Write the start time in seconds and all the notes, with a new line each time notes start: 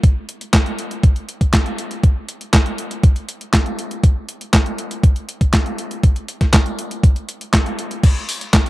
0.04 kick, closed hi-hat
0.29 closed hi-hat
0.41 closed hi-hat
0.53 kick, snare, clap, closed hi-hat
0.66 closed hi-hat
0.79 closed hi-hat
0.91 closed hi-hat
1.03 kick, closed hi-hat
1.16 closed hi-hat
1.29 closed hi-hat
1.41 kick, closed hi-hat
1.53 kick, snare, clap, closed hi-hat
1.66 closed hi-hat
1.78 closed hi-hat
1.91 closed hi-hat
2.03 kick, closed hi-hat
2.29 closed hi-hat
2.41 closed hi-hat
2.53 kick, snare, clap, closed hi-hat
2.66 closed hi-hat
2.78 closed hi-hat
2.91 closed hi-hat
3.03 kick, closed hi-hat
3.16 closed hi-hat
3.29 closed hi-hat
3.41 closed hi-hat
3.54 kick, snare, clap, closed hi-hat
3.66 closed hi-hat
3.79 closed hi-hat
3.91 closed hi-hat
4.04 kick, closed hi-hat
4.29 closed hi-hat
4.41 closed hi-hat
4.53 kick, snare, clap, closed hi-hat
4.66 closed hi-hat
4.78 closed hi-hat
4.91 closed hi-hat
5.03 kick, closed hi-hat
5.16 closed hi-hat
5.29 closed hi-hat
5.41 kick, closed hi-hat
5.53 kick, snare, clap, closed hi-hat
5.66 closed hi-hat
5.78 closed hi-hat
5.91 closed hi-hat
6.03 kick, closed hi-hat
6.16 closed hi-hat
6.28 closed hi-hat
6.41 kick, snare, closed hi-hat
6.53 kick, snare, clap, closed hi-hat
6.66 closed hi-hat
6.79 closed hi-hat
6.91 closed hi-hat
7.03 kick, closed hi-hat
7.16 closed hi-hat
7.29 closed hi-hat
7.41 closed hi-hat
7.53 kick, snare, clap, closed hi-hat
7.66 closed hi-hat
7.79 closed hi-hat
7.91 closed hi-hat
8.03 kick, closed hi-hat, crash, tambourine
8.16 tambourine
8.29 open hi-hat, tambourine
8.41 closed hi-hat, tambourine
8.53 kick, snare, clap, closed hi-hat, tambourine
8.66 closed hi-hat, tambourine